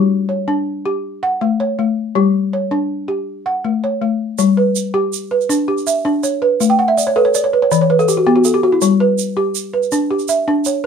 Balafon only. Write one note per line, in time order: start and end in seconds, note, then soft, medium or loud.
0.00 0.29 G3 medium
0.00 0.48 G4 medium
0.29 0.85 C#5 medium
0.48 0.85 D4 medium
0.85 1.04 G4 medium
1.23 1.79 F#5 medium
1.41 1.77 A3 medium
1.60 2.16 C#5 medium
1.79 2.16 A3 medium
2.15 2.53 G3 medium
2.15 2.71 G4 medium
2.53 3.09 C#5 medium
2.71 3.08 D4 medium
3.08 3.27 G4 medium
3.46 4.01 F#5 medium
3.64 4.00 A3 medium
3.84 4.39 C#5 medium
4.02 4.38 A3 medium
4.39 4.75 G3 medium
4.57 5.13 B4 medium
4.94 5.31 G4 medium
5.31 5.86 B4 medium
5.49 5.86 D4 medium
5.68 6.23 G4 medium
5.87 6.42 E5 medium
6.05 6.42 D4 medium
6.23 6.79 C#5 medium
6.42 6.79 B4 medium
6.60 6.97 A3 medium
6.70 6.87 G5 medium
6.79 6.96 F#5 medium
6.88 7.05 E5 medium
6.97 7.14 D5 medium
7.07 7.24 C#5 medium
7.16 7.53 A4 medium
7.16 7.33 B4 medium
7.25 7.42 C#5 medium
7.35 7.52 D5 medium
7.44 7.61 C#5 medium
7.53 7.70 B4 medium
7.62 7.79 C#5 medium
7.71 8.08 E3 medium
7.71 7.88 D5 medium
7.81 7.98 C#5 medium
7.90 8.07 B4 medium
7.99 8.16 A4 medium
8.08 8.25 G4 medium
8.17 8.34 F#4 medium
8.27 8.63 B3 medium
8.27 8.44 G4 medium
8.36 8.53 F#4 medium
8.45 8.62 A4 medium
8.54 8.71 G4 medium
8.63 8.80 F#4 medium
8.72 8.89 E4 medium
8.82 9.19 G3 medium
9.00 9.55 B4 medium
9.37 9.92 G4 medium
9.73 10.29 B4 medium
9.92 10.29 D4 medium
10.11 10.66 G4 medium
10.29 10.84 E5 medium
10.48 10.85 D4 medium
10.66 10.87 C#5 medium